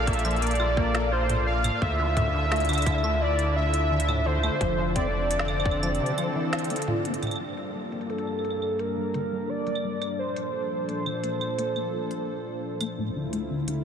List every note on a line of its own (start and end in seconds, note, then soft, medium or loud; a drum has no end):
0.00 1.71 A#1 loud
0.00 1.79 A#3 medium
0.00 4.57 F4 medium
0.00 1.79 A4 medium
0.00 1.78 D5 medium
0.07 0.15 A#3 medium
0.07 0.44 E5 loud
0.07 kick loud
0.07 closed hi-hat medium
0.13 closed hi-hat medium
0.19 closed hi-hat soft
0.25 0.37 F3 loud
0.25 closed hi-hat soft
0.25 claves medium
0.31 closed hi-hat soft
0.36 closed hi-hat soft
0.42 0.54 A#3 medium
0.42 1.14 D5 loud
0.42 closed hi-hat medium
0.47 closed hi-hat medium
0.51 closed hi-hat medium
0.55 closed hi-hat soft
0.60 0.72 F4 medium
0.60 claves soft
0.77 0.94 A#3 loud
0.77 kick loud
0.95 1.11 A#3 medium
0.95 snare loud
0.95 closed hi-hat soft
1.12 1.24 F4 loud
1.12 1.46 C5 loud
1.29 closed hi-hat medium
1.29 mid tom medium
1.47 1.83 F5 loud
1.64 closed hi-hat medium
1.64 mid tom medium
1.64 claves medium
1.82 4.50 D2 loud
1.82 4.58 D3 medium
1.82 7.36 D4 medium
1.82 4.58 E4 medium
1.82 3.23 E5 loud
1.82 kick loud
1.99 2.06 D3 medium
2.17 2.29 A2 loud
2.17 kick loud
2.17 closed hi-hat medium
2.17 mid tom loud
2.34 2.46 D3 medium
2.51 2.64 A3 medium
2.51 snare loud
2.51 closed hi-hat soft
2.56 closed hi-hat soft
2.60 closed hi-hat soft
2.65 closed hi-hat medium
2.69 2.86 D3 loud
2.69 closed hi-hat medium
2.69 claves medium
2.73 closed hi-hat medium
2.73 claves soft
2.78 closed hi-hat medium
2.78 claves soft
2.82 closed hi-hat medium
2.86 3.03 D3 medium
2.86 kick loud
2.86 closed hi-hat medium
2.86 claves soft
2.92 claves soft
2.98 claves soft
3.04 3.16 A3 loud
3.04 claves medium
3.21 3.56 D5 loud
3.39 closed hi-hat medium
3.56 4.27 E5 loud
3.74 closed hi-hat medium
3.91 3.98 D3 medium
4.00 closed hi-hat medium
4.08 4.20 A2 loud
4.08 mid tom loud
4.08 claves medium
4.26 4.38 D3 medium
4.26 4.95 C5 medium
4.43 4.55 A3 medium
4.43 claves medium
4.61 6.00 F1 loud
4.61 7.37 D3 medium
4.61 4.77 F3 loud
4.61 7.37 C4 medium
4.61 7.37 A4 medium
4.61 kick loud
4.61 closed hi-hat medium
4.78 4.95 F3 medium
4.96 5.08 C4 loud
4.96 7.01 D5 medium
4.96 kick loud
4.96 closed hi-hat medium
5.31 closed hi-hat medium
5.39 snare loud
5.48 claves medium
5.60 claves soft
5.66 kick loud
5.71 claves soft
5.83 5.90 F3 medium
5.83 closed hi-hat medium
5.83 claves medium
5.95 closed hi-hat soft
6.00 6.12 C3 loud
6.06 closed hi-hat soft
6.18 6.30 F3 medium
6.18 closed hi-hat medium
6.18 claves soft
6.35 6.72 E3 loud
6.53 snare loud
6.53 closed hi-hat soft
6.59 closed hi-hat medium
6.64 closed hi-hat medium
6.70 6.77 F4 medium
6.70 closed hi-hat medium
6.76 closed hi-hat medium
6.82 closed hi-hat medium
6.88 7.07 F4 medium
6.88 mid tom loud
7.05 7.12 A3 medium
7.05 closed hi-hat medium
7.14 closed hi-hat soft
7.23 closed hi-hat soft
7.23 mid tom medium
7.23 claves soft
7.27 claves soft
7.31 closed hi-hat soft
7.31 claves soft
7.36 claves soft
7.40 10.16 G2 medium
7.40 7.52 G3 medium
7.40 10.16 G3 medium
7.40 10.16 A#3 medium
7.40 12.94 D4 medium
7.40 claves soft
7.44 claves soft
7.49 claves soft
7.53 claves soft
7.57 7.69 D4 medium
7.57 closed hi-hat medium
7.75 7.91 G3 loud
7.92 8.09 G3 medium
7.92 closed hi-hat soft
8.01 closed hi-hat soft
8.10 8.22 D4 loud
8.10 8.81 A4 medium
8.10 closed hi-hat medium
8.18 closed hi-hat medium
8.27 claves soft
8.39 claves soft
8.45 closed hi-hat soft
8.50 claves soft
8.62 claves soft
8.79 9.51 A#4 medium
8.79 closed hi-hat medium
8.97 9.04 G3 medium
9.14 9.26 D3 loud
9.14 closed hi-hat medium
9.32 9.44 G3 medium
9.49 9.61 D4 medium
9.49 10.18 D5 loud
9.67 9.83 G3 loud
9.67 closed hi-hat soft
9.75 claves soft
9.84 10.01 G3 medium
10.01 10.13 D4 medium
10.01 closed hi-hat medium
10.01 claves medium
10.19 12.95 A#2 medium
10.19 12.95 F3 medium
10.19 12.95 A4 medium
10.19 12.59 C5 loud
10.36 closed hi-hat medium
10.89 10.96 A#3 medium
10.89 closed hi-hat soft
11.06 11.18 F3 medium
11.06 claves soft
11.24 11.36 A#3 medium
11.24 closed hi-hat medium
11.41 11.53 F4 medium
11.41 claves soft
11.58 11.75 A#3 medium
11.58 closed hi-hat medium
11.76 11.93 A#3 medium
11.76 claves soft
11.93 12.05 F4 loud
12.11 closed hi-hat medium
12.81 12.88 A#3 medium
12.81 closed hi-hat medium
12.81 claves medium
12.98 13.84 D2 medium
12.98 13.10 A2 loud
12.98 13.84 D3 medium
12.98 13.84 E4 medium
12.98 13.84 F4 medium
13.16 13.28 D3 medium
13.33 13.45 A3 medium
13.33 closed hi-hat soft
13.50 13.67 D3 medium
13.68 13.84 D3 medium
13.68 closed hi-hat medium